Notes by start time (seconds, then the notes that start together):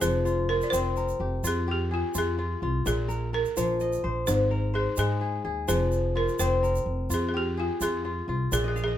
Already playing: G#4 A#4 F5
0.01 F1 F3 G#4, shaker
0.25 F4, shaker
0.49 F4 A#4
0.62 D5, shaker
0.70 F1 C4 C5, shaker
0.96 A#4, shaker
1.09 shaker
1.20 F1 G4
1.43 F2 F4 G#4, shaker
1.68 G4
1.91 F4 G#4
2.15 F2 F4 G#4, shaker
2.38 F4
2.62 C2 F4
2.86 A#1 A#2 G#4, shaker
3.08 A#4, shaker
3.33 A#4
3.45 shaker
3.57 A#1 F3 F5, shaker
3.80 D#5, shaker
3.93 shaker
4.04 A#1 C5
4.27 G#1 G#2 C5, shaker
4.51 A#4
4.74 G#4 C5
4.97 G#2 G#3 G#4, shaker
5.21 G#4
5.45 D#2 G#4
5.68 F1 F3 G#4, shaker
5.92 shaker
6.15 F4 A#4
6.28 shaker
6.39 F1 C4 C5, shaker
6.63 A#4, shaker
6.76 shaker
6.86 F1
7.10 F2 F4, shaker
7.14 G#4
7.29 G#4
7.34 G4
7.57 F4 G#4
7.81 F2 F4 G#4, shaker
8.05 F4
8.28 C2 F4
8.52 A#1 A#2 G#4 D5, shaker
8.64 G#4 D#5
8.76 F5, shaker
8.84 G#4
8.88 D#5